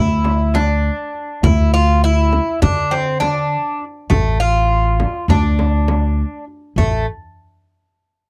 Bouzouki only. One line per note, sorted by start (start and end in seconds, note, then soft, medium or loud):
0.00 0.56 E4 medium
0.55 1.46 D4 medium
1.44 1.73 E4 medium
1.74 2.03 F4 medium
2.04 2.62 E4 medium
2.62 2.93 D4 medium
2.91 3.20 C4 medium
3.20 3.83 D4 medium
4.10 4.38 A3 medium
4.40 5.25 F4 medium
5.30 6.44 D4 medium
6.78 7.05 A3 medium